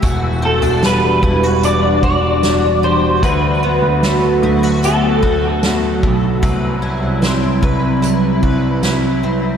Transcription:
Already playing: E3 E4 B4
0.02 E1 E3 G3 D4 F#4, kick, closed hi-hat
0.42 C4 A4
0.62 E1 D4
0.83 G3 B4, snare, closed hi-hat
1.23 E1 E4, kick
1.43 F#4
1.63 D4 D5, closed hi-hat
2.03 E1 F#4 D5, kick
2.43 D4, snare, closed hi-hat
2.83 G3 C5
3.23 D2 D3 F#3 A3 F#4 B4, kick, closed hi-hat
3.63 B3
3.82 D2
4.03 A3, snare, closed hi-hat
4.43 D2 E4
4.63 F#4
4.83 B3 A4, closed hi-hat
5.23 D2 F#4, kick
5.63 B3, snare, closed hi-hat
6.03 B1 A3, kick
6.43 C2 C3 G3 E4 B4, kick, closed hi-hat
6.82 E4
7.03 C2
7.22 C4, snare, closed hi-hat
7.63 C2 B4, kick
8.02 E4, closed hi-hat
8.43 C2 B4, kick
8.83 E4, snare, closed hi-hat
9.23 C4

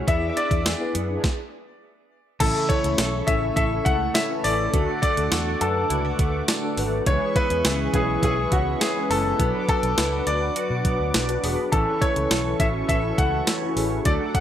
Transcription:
Already playing: E4 G#4
0.06 E2 B3 E4 G#4 D5 E5 D6, kick, closed hi-hat
0.30 E5
0.36 B3 D4 E4 G#4 D5 E5, closed hi-hat
0.51 E2, kick, closed hi-hat
0.65 G#4, snare, closed hi-hat, tambourine
0.79 B3 E4 G#4 B4
0.94 F#2 B3, closed hi-hat
1.10 E3 D4 G#4
1.24 kick, snare
2.40 A1 C#3 E3 A3 C#4 E4 A4 E5 C#6, kick, closed hi-hat, crash
2.69 A3 C#5, kick, closed hi-hat
2.84 C#2 C#4 E4 A4, closed hi-hat
2.98 B1 A4, snare, closed hi-hat, tambourine
3.27 A1 C#4 E4 A4 E5, kick, closed hi-hat
3.56 A1 A4 E5, kick, closed hi-hat
3.85 C#2 A3 F#5, kick, closed hi-hat
4.14 C#4 E5, snare, closed hi-hat, tambourine
4.29 C#4 E4 B4
4.43 A1 A3 C#4 E4 A4 D5, open hi-hat
4.73 D2 D3 A3 D4 F#4 A4 F#5 D6, kick, closed hi-hat
5.02 A3 D5, kick, closed hi-hat
5.17 D2 D4 F#4 A4, closed hi-hat
5.31 E2 F#4, snare, closed hi-hat, tambourine
5.60 F#2 D4 F#4 A4 B4, closed hi-hat
5.90 C#2 E4, closed hi-hat
6.05 F#4
6.19 D2 A3, kick, closed hi-hat
6.48 D4, snare, closed hi-hat, tambourine
6.62 D4 F#4 A4
6.77 G#1 A3 D4 F#4 B4, open hi-hat
7.06 C#2 E3 G#3 B3 C#4 E4 G#4 B4 C#5 E5 C#6, kick, closed hi-hat
7.36 B3 B4, kick, closed hi-hat
7.49 E2 G#3 B3 C#4 E4 B4, closed hi-hat
7.64 C#2 G#4, snare, closed hi-hat, tambourine
7.93 B1 G#3 B3 C#4 E4 G#4 B4, kick, closed hi-hat
8.23 B1 G#4, kick, closed hi-hat
8.52 C#2 B3 F#4, kick, closed hi-hat
8.81 C#4 G#4, snare, closed hi-hat, tambourine
8.95 G#3 B3 C#4 E4 B4
9.09 F#1 G#3 B3 C#4 E4 A4 B4, open hi-hat
9.39 B1 F#3 B3 D4 F#4 B4 F#5 D6, kick, closed hi-hat
9.69 B3 A4, kick, closed hi-hat
9.82 B1 D4 F#4 B4, closed hi-hat
9.98 C#2 E4, snare, closed hi-hat, tambourine
10.12 F#4
10.26 D2 D4 F#4 B4 D5, closed hi-hat
10.56 F#4, closed hi-hat
10.70 B2
10.85 B1 B3, kick, closed hi-hat
10.99 D2
11.14 B1 D4, snare, closed hi-hat, tambourine
11.28 D4 F#4 B4, closed hi-hat
11.43 E1 B3 D4 F#4 G#4, open hi-hat
11.72 A1 E3 C#4 A4 B4 E5 C#6, kick, closed hi-hat
12.01 A3 C#5, kick, closed hi-hat
12.16 C#2 C#4 E4 A4, closed hi-hat
12.31 B1 A4, snare, closed hi-hat, tambourine
12.59 A1 C#4 E4 F#4 E5, kick, closed hi-hat
12.89 A1 A4 E5, kick, closed hi-hat
13.18 C#2 A3 F#5, kick, closed hi-hat
13.47 C#4, snare, closed hi-hat, tambourine
13.61 C#4 E4 F#4
13.75 A1 A3 C#4 E4 G#4, open hi-hat
14.05 D2 F#3 A3 D4 F#4 A4 D5 F#5 D6, kick, closed hi-hat
14.35 A3 F#5, kick, closed hi-hat

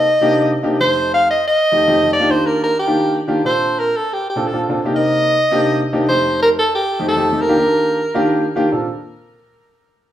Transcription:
Already playing: D#5
0.21 C3 A#3 D4 D#4 G4
0.63 C3 A#3 D4 D#4 G4
0.80 F2 A3 C4 D#4 G4 C5
1.14 F5
1.31 D#5
1.48 D#5
1.72 F2 A3 C4 D#4 G4
1.88 F2 A3 C4 D#4 G4
2.04 F2 A3 C4 D#4 G4
2.13 D5
2.20 D#3 A#3 D4 F4 G4
2.28 D#3 A#3 D4 F4 G4 C5
2.46 A#4
2.64 A#4
2.79 G4
2.87 D#3 A#3 D4 F4 G4
3.27 D#3 A#3 D4 F4 G4
3.44 A#2 C4 D4 F4 A4 C5
3.79 A#4
3.97 A4
4.13 G4
4.30 G4
4.36 A#2 C4 D4 F4 A4
4.47 A4
4.53 A#2 C4 D4 F4 A4
4.69 A#2 C4 D4 F4 A4
4.85 C3 A#3 D4 D#4 G4
4.93 C3 A#3 C4 D#4 A#4 D#5
5.51 C3 A#3 D4 D#4 G4
5.93 C3 A#3 D4 D#4 G4
6.08 F2 A3 C4 D#4 G4 C5
6.42 A#4
6.59 A4
6.75 G4
7.00 F2 A3 C4 D#4 G4
7.08 A4
7.16 F2 A3 C4 D#4 G4
7.32 F2 A3 C4 D#4 G4
7.41 A#4
7.49 D#3 A#3 D4 F4 G4
7.57 D#3 A#3 D4 F4 G4
8.14 D#3 A#3 D4 F4 G4
8.56 D#3 A#3 D4 F4 G4
8.72 A#2 C4 D4 F4 A4

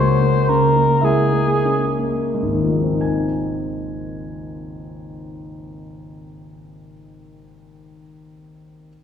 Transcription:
Already playing: C#2 G#3 A#3 F#4 C5 F#5
0.22 A#3
0.49 C#3 A#4
0.75 A#3
1.01 G#3 E4 G#4 E5
1.33 A#3
1.64 C#4
1.98 A#3
2.34 G#3
2.42 G#1
2.53 D#2
2.62 F3
2.69 G#3 A#3
2.83 C4
2.92 D#4
3.01 G#5

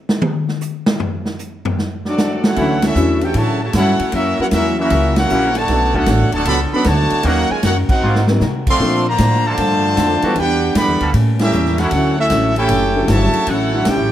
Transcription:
0.09 snare
0.22 high tom
0.48 snare
0.61 hi-hat pedal
0.86 snare
1.00 floor tom
1.25 snare
1.39 hi-hat pedal
1.65 floor tom
1.79 snare
2.05 F#3 A3 C4 D4 F#4 A4 D5, snare
2.18 snare, hi-hat pedal
2.44 A3 C#4 E4 F#4 A4 C#5 F#5, snare
2.56 D2 D3 E3 F#3 A3 C#4 D4 E4 F#4, kick, ride
2.82 A3 C#4 E4 F#4 A4 E5, snare, ride
2.95 E2 D3 E3 F#3 A3 C#4 D4 E4 F#4, hi-hat pedal
3.21 E4 G4 A4 C#5 G5, ride
3.34 A2 C#3 D3 F#3 A3 C#4 E4 F#4 C#5 E5 A5, kick, ride
3.62 C#3 F#3 A3 F#4 C#5 E5 A5
3.73 G2 D3 F#3 A3 C#4 E4 F#4 A4 C#5 F#5, kick, snare, hi-hat pedal, ride
3.99 muted upright bass stroke, ride
4.12 F#2 F#3 A#3 C#4 E4 F#4 A#4 E5, kick, ride
4.39 F#3 A#3 C#4 E4 F#4 A#4 C#5 F#5, muted upright bass stroke
4.51 E2 F#3 A#3 C#4 E4 F#4 A#4 E5, kick, snare, hi-hat pedal, ride
4.78 E3 A#3 C#4 E4 F#4 A#4 E5
4.90 C#2 F#3 C#4 E4, kick, ride
4.94 A#4
5.16 A#3 C#4 E4 F#4 A#4 C#5 F#5, snare, ride
5.29 A#1 E3 F#3 A#3 C#4 E4 A#4, hi-hat pedal
5.55 D3 F#3 A3 F#4 C#5 D5 A5, ride
5.68 B1 F#3 B3 C#4 D4 A4, kick, snare, ride
5.72 C#5
5.94 D3 A3 B3 C#4 D4 F#4 A4 C#5 F#5, kick
6.06 A1 B3 D4 A4 C#5, kick, snare, hi-hat pedal, ride
6.20 F#1
6.32 D1 D3 F#3 A3 B3 C#4 F#4 A4 C#5 D5 A5, ride
6.45 C#2 D3 F#3 B3 D4 A4 D5 F#5 B5, kick, ride
6.50 C#5
6.72 D3 F#3 B3 C#4 D4 A4 B4 D5 F#5 B5, muted upright bass stroke
6.84 D2 D3 F#3 A3 B3 D4 F#4 A4 C#5 D5 A5, kick, snare, hi-hat pedal, ride
7.10 muted upright bass stroke, ride
7.23 D#2 D#3 F#3 A#3 C#4 D#4 F#4 A#4 C#5 F#5, kick, ride
7.50 G#3 F4 A#4 C#5 G#5, muted upright bass stroke
7.63 F#2 D#3 A#3 C#4 D#4 F#4 A#4 C#5 F#5, kick, snare, hi-hat pedal, ride
7.89 C4 D#4 F#4 A#4 C5 F#5, muted upright bass stroke, kick, crash
8.02 G#2 F#3 G#3 A#3 C4 F4 F#4 A#4
8.15 snare
8.27 F#3 A#3 C4 D#4 A#4, snare
8.40 C3 G#3 C4 F#4 A#4, snare, hi-hat pedal
8.67 F3 A3 C4 A4 D5 F5 C6, kick, crash
8.79 A#2 F3 A#3 C4 D4 A4 C5
9.09 D3 F3 A#3 F4 C5 D5 A#5
9.18 A2 A#3 D4 A4 C5, kick, snare, hi-hat pedal, ride
9.45 D3 F3 A3 A#3 C4 F4 A4 C5 D5 A5
9.57 G2 A#3 D4 A4 C5, kick, ride
9.96 F2 A#3 D4 A4 C5, kick, snare, hi-hat pedal, ride
10.22 E3 G3 B3 D4 F#4 A4, muted upright bass stroke, ride
10.35 E2 E3 G3 B3 D4 F#4 G4 B4 F#5 G5, kick, ride
10.74 F#2 D3 E3 G3 B3 D4 F#4 G4 D5 F#5 B5, kick, snare, hi-hat pedal, ride
10.87 E2
11.00 D2 G3 A#3 C#4 A4, ride
11.13 A2 G3 A#3 C#4, kick, ride
11.39 G3 A#3 C#4 E4 G4 A4 A#4 E5, snare, ride
11.52 E2 A2 G3 A#3 C#4, hi-hat pedal
11.65 snare
11.78 D3 F#3 A3 C#4 E4 F#4 A4 C#5 F#5, snare, ride
11.91 D2 D3 F#3 C#4, kick, ride
11.95 E4
12.18 A3 C#4 E4 F#4 A4 E5
12.30 A1 D3 F#3 C#4 E4, kick, snare, hi-hat pedal, ride
12.56 D3 F#3 A3 C#4 E4 G4 A4 C#5 G5, ride
12.69 F#1 D3 F#3 C#4 E4, kick, ride
12.96 D3 F#3 C#4 E4 A4
13.08 G1 C#3 D3 F#3 A3 C#4 E4 F#4 C#5 E5 A5, kick, snare, hi-hat pedal, ride
13.33 ride
13.47 A1 D3 F#3 A3 C#4 E4 F#4 A4 C#5 F#5, kick, ride
13.73 D3 F#3 C#4 D4 E4 A4
13.85 B1 D3 F#3 C#4 E4 G4 A4 C#5 G5, kick, snare, hi-hat pedal, ride
13.99 A1

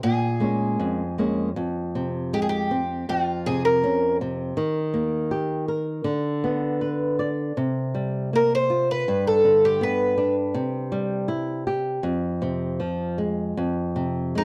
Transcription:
0.03 A#2 G#4
0.40 G#3 A#3 C#4
0.80 F2
1.18 G#3 A#3 C#4
1.56 F2
1.95 C3
2.33 G#3 G4
2.42 G#4
2.49 G4
2.71 C4
3.09 F2 F4
3.46 C3 G#4
3.65 A#4
3.84 C#4
4.21 C3
4.57 D#3
4.94 A#3
5.31 G4
5.68 A#4
6.04 D3
6.44 B3
6.81 B4
7.19 D5
7.57 C3
7.94 G3
8.33 A#3 A#4
8.55 C5
8.70 F4
8.91 B4
9.08 G2
9.27 A4
9.44 D3
9.65 G4
9.81 B3 B4
10.18 D4
10.54 C3
10.92 G3
11.28 E4
11.67 G4
12.03 F2
12.42 C3
12.80 F3
13.18 G#3
13.57 F2
13.96 C3
14.35 G#3 D#4

